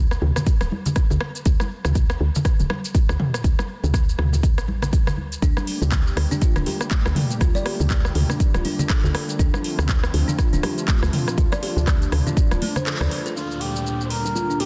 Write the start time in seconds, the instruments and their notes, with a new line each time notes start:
Already playing: fm bass D2
0.11 cross-stick, shaker
0.22 fm bass D2, mid tom, high conga
0.36 cross-stick, muted conga, low conga, shaker
0.46 kick, closed hi-hat, shaker
0.61 fm bass D1, cross-stick, closed hi-hat, shaker
0.72 muted conga, high conga
0.86 closed hi-hat, low conga, shaker
0.96 kick, cross-stick, closed hi-hat, shaker
1.10 fm bass D2, muted conga, low conga, shaker
1.21 cross-stick
1.35 closed hi-hat, shaker
1.45 fm bass D2, kick, closed hi-hat, muted conga, shaker
1.60 cross-stick, high conga, shaker
1.85 fm bass D2, cross-stick, mid tom, muted conga, high conga, low conga, shaker
1.95 kick, closed hi-hat, shaker
2.10 cross-stick, shaker
2.20 fm bass D2, high conga
2.35 muted conga, low conga, shaker
2.45 kick, cross-stick, closed hi-hat, shaker
2.59 fm bass D1, closed hi-hat, low conga, shaker
2.70 cross-stick, muted conga, high conga
2.84 closed hi-hat, shaker
2.95 kick, closed hi-hat, high conga, shaker
3.09 fm bass D2, cross-stick, muted conga, high conga, shaker
3.20 mid tom, low conga
3.34 cross-stick, closed hi-hat, shaker
3.44 fm bass D2, kick, closed hi-hat, muted conga, shaker
3.59 cross-stick, high conga, shaker
3.83 fm bass D2, mid tom, muted conga, high conga, low conga, shaker
3.94 kick, cross-stick, closed hi-hat, shaker
4.09 shaker
4.18 fm bass D2, cross-stick, mid tom, high conga
4.33 muted conga, low conga, shaker
4.43 kick, closed hi-hat, shaker
4.58 fm bass A1, cross-stick, closed hi-hat, shaker
4.68 muted conga, high conga
4.82 cross-stick, closed hi-hat, low conga, shaker
4.93 kick, closed hi-hat, shaker
5.06 fm bass D2, cross-stick, muted conga, low conga, shaker
5.17 high conga
5.32 closed hi-hat, shaker
5.42 fm bass D2, analog synth pad D3 G3 A3 A#3 G4, kalimba D4, kick, closed hi-hat, muted conga, shaker
5.57 cross-stick, high conga, shaker
5.67 open hi-hat
5.82 fm bass D2, mid tom, muted conga, high conga, low conga, shaker
5.92 kick, cross-stick, clap, closed hi-hat, shaker
6.07 shaker
6.17 fm bass D2, cross-stick, open hi-hat, high conga
6.31 kalimba D4, muted conga, low conga, shaker
6.41 kalimba F4, kick, closed hi-hat, shaker
6.56 fm bass D1, kalimba D4, cross-stick, closed hi-hat, low conga, shaker
6.66 kalimba G4, open hi-hat, muted conga, high conga
6.81 cross-stick, closed hi-hat, shaker
6.91 kalimba A3, kick, clap, closed hi-hat, high conga, shaker
7.05 fm bass D2, cross-stick, muted conga, high conga, shaker
7.15 open hi-hat, mid tom, low conga
7.30 closed hi-hat, shaker
7.41 fm bass D2, kalimba F4, kick, cross-stick, closed hi-hat, muted conga, shaker
7.54 kalimba D5, high conga, shaker
7.65 kalimba G4, cross-stick, open hi-hat
7.80 fm bass D2, mid tom, muted conga, high conga, low conga, shaker
7.90 kick, clap, closed hi-hat, shaker
8.05 cross-stick, shaker
8.15 fm bass D2, open hi-hat, mid tom, high conga
8.29 kalimba D4, cross-stick, muted conga, low conga, shaker
8.40 kick, closed hi-hat, shaker
8.54 fm bass D1, kalimba F4, cross-stick, closed hi-hat, shaker
8.65 kalimba D4, open hi-hat, muted conga, high conga
8.79 kalimba D4, closed hi-hat, low conga, shaker
8.90 kalimba A4, kick, cross-stick, clap, closed hi-hat, shaker
9.04 fm bass D2, kalimba A4, muted conga, low conga, shaker
9.14 cross-stick, open hi-hat, high conga
9.29 closed hi-hat, shaker
9.39 fm bass D2, analog synth pad F3 A3 C4 F4, kalimba D4, kick, closed hi-hat, muted conga, shaker
9.54 cross-stick, high conga, shaker
9.64 open hi-hat
9.79 fm bass D2, cross-stick, mid tom, muted conga, high conga, low conga, shaker
9.89 kick, clap, closed hi-hat, shaker
10.04 cross-stick, shaker
10.14 fm bass D2, open hi-hat, high conga
10.28 kalimba D4, muted conga, low conga, shaker
10.39 kalimba F4, kick, cross-stick, closed hi-hat, shaker
10.53 fm bass D1, kalimba D4, closed hi-hat, low conga, shaker
10.63 kalimba G4, cross-stick, open hi-hat, muted conga, high conga
10.78 closed hi-hat, shaker
10.88 kalimba A3, kick, clap, closed hi-hat, high conga, shaker
11.02 fm bass D2, cross-stick, muted conga, high conga, shaker
11.13 open hi-hat, mid tom, low conga
11.28 cross-stick, closed hi-hat, shaker
11.38 fm bass D2, analog synth pad D4, kalimba F4, kick, closed hi-hat, muted conga, shaker
11.52 kalimba D5, cross-stick, closed hi-hat, high conga, shaker
11.63 kalimba G4, open hi-hat
11.77 fm bass D2, mid tom, muted conga, high conga, low conga, shaker
11.87 kick, cross-stick, clap, closed hi-hat, shaker
12.02 closed hi-hat, shaker
12.12 fm bass D2, cross-stick, open hi-hat, mid tom, high conga
12.27 kalimba D4, closed hi-hat, muted conga, low conga, shaker
12.37 kick, closed hi-hat, high conga, shaker
12.51 fm bass D1, kalimba F4, cross-stick, closed hi-hat, shaker
12.62 kalimba A3, open hi-hat, muted conga, high conga
12.76 kalimba C5, cross-stick, closed hi-hat, low conga, shaker
12.87 kalimba A4, clap, closed hi-hat, shaker
13.01 fm bass D2, kalimba D5, cross-stick, muted conga, low conga, shaker
13.11 open hi-hat, high conga
13.26 kalimba A4, closed hi-hat, shaker
13.36 analog synth pad D2 A#2 D3 G3 A#3 D4, kalimba D4, muted trumpet F4, downlifter, shaker
13.51 shaker
13.61 muted trumpet G4, open hi-hat
13.76 shaker
13.87 shaker
14.01 muted trumpet C5, shaker
14.10 muted trumpet A#4, open hi-hat
14.25 kalimba D4, shaker
14.35 kalimba F4, shaker
14.50 kalimba D4, shaker
14.60 muted trumpet G4, kalimba G4, open hi-hat